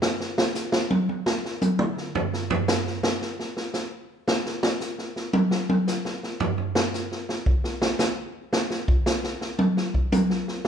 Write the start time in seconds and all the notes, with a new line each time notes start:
0.02 snare
0.20 snare
0.38 snare
0.55 snare, hi-hat pedal
0.72 snare
0.91 high tom
1.09 high tom
1.26 snare
1.45 snare
1.62 hi-hat pedal, high tom
1.79 mid tom
1.97 snare
2.15 floor tom
2.33 snare
2.50 floor tom
2.68 snare, hi-hat pedal
2.87 snare
3.03 snare
3.22 snare
3.39 snare
3.57 snare
3.74 snare, hi-hat pedal
4.28 snare
4.46 snare
4.63 snare
4.81 snare, hi-hat pedal
4.98 snare
5.16 snare
5.33 high tom
5.51 snare
5.69 high tom
5.88 snare, hi-hat pedal
6.05 snare
6.23 snare
6.40 floor tom
6.58 floor tom
6.75 snare
6.94 snare, hi-hat pedal
7.12 snare
7.29 snare
7.46 kick
7.64 snare
7.82 snare
7.99 snare, hi-hat pedal
8.53 snare
8.70 snare
8.88 kick
9.06 snare, hi-hat pedal
9.24 snare
9.41 snare
9.59 high tom
9.77 snare
9.94 kick
10.12 hi-hat pedal, high tom
10.30 snare
10.48 snare